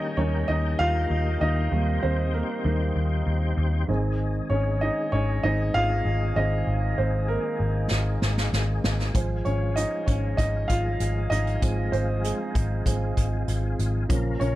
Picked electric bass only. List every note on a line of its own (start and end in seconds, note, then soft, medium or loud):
0.18 0.43 D#2 medium
0.49 0.74 D#2 medium
0.79 1.05 D#2 medium
1.10 1.36 D#2 medium
1.41 1.67 D#2 medium
1.72 1.97 D#2 medium
2.03 2.41 D#2 medium
2.65 2.90 D#2 medium
2.96 3.21 D#2 medium
3.27 3.52 D#2 medium
3.57 3.83 D#2 medium
3.89 4.39 G#1 medium
4.50 4.89 G#1 medium
5.13 5.38 G#1 medium
5.44 5.69 G#1 medium
5.75 6.00 G#1 medium
6.05 6.31 G#1 medium
6.36 6.61 G#1 medium
6.67 6.93 G#1 medium
6.98 7.36 G#1 medium
7.60 7.85 G#1 medium
7.91 8.16 G#1 medium
8.22 8.47 G#1 medium
8.53 8.78 G#1 medium
8.84 9.09 G#1 medium
9.15 9.40 G#1 medium
9.46 9.84 G#1 medium
10.08 10.33 G#1 medium
10.38 10.64 G#1 medium
10.70 10.95 G#1 medium
11.00 11.26 G#1 medium
11.31 11.57 G#1 medium
11.62 11.88 G#1 medium
11.93 12.31 G#1 medium
12.55 12.80 G#1 medium
12.86 13.11 G#1 medium
13.17 13.43 G#1 medium
13.48 13.73 G#1 medium
13.79 14.04 G#1 medium
14.10 14.35 A#1 medium
14.41 14.55 A#1 medium